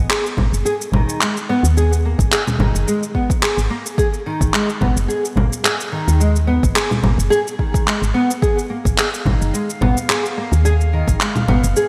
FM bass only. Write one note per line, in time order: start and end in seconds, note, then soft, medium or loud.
0.37 0.50 G#1 medium
0.52 0.63 F#1 medium
0.92 1.05 G#1 medium
1.63 2.15 D#2 medium
2.19 2.29 G#1 loud
2.59 2.72 G#1 medium
2.74 2.85 F#1 medium
3.58 3.68 G#1 medium
4.41 4.52 G#1 medium
4.81 4.94 G#1 medium
4.96 5.07 F#1 medium
5.36 5.49 G#1 medium
6.08 6.60 D#2 medium
6.63 6.74 G#1 medium
7.03 7.16 G#1 medium
7.18 7.29 F#1 medium
8.02 8.13 G#1 medium
8.85 8.96 G#1 medium
9.26 9.39 G#1 medium
9.41 9.52 F#1 medium
9.81 9.94 G#1 medium
10.52 11.04 D#2 medium
11.08 11.18 G#1 medium
11.48 11.61 G#1 medium
11.63 11.74 F#1 medium